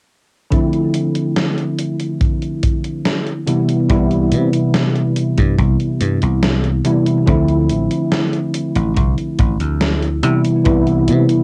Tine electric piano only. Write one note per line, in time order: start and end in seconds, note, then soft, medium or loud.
0.50 3.42 D3 medium
0.50 3.42 F3 medium
0.50 3.42 A3 medium
0.50 3.43 C4 medium
0.50 3.43 E4 medium
3.47 3.84 C3 medium
3.47 3.84 E3 medium
3.47 3.85 G3 medium
3.47 3.85 B3 medium
3.47 3.85 E4 medium
3.89 6.80 C3 medium
3.89 6.80 E3 medium
3.89 6.81 G3 medium
3.89 6.81 B3 medium
3.89 6.81 E4 medium
6.85 7.22 C3 medium
6.85 7.22 E3 medium
6.85 7.23 G3 medium
6.85 7.23 B3 medium
6.85 7.23 E4 medium
7.26 10.18 D3 medium
7.26 10.18 F3 medium
7.26 10.18 A3 medium
7.26 10.19 C4 medium
7.26 10.19 E4 medium
10.23 10.60 C3 medium
10.23 10.61 E3 medium
10.23 10.61 G3 medium
10.23 10.61 B3 medium
10.23 10.61 E4 medium
10.64 11.44 C3 medium
10.64 11.44 E3 medium
10.64 11.44 G3 medium
10.64 11.44 B3 medium
10.64 11.44 E4 medium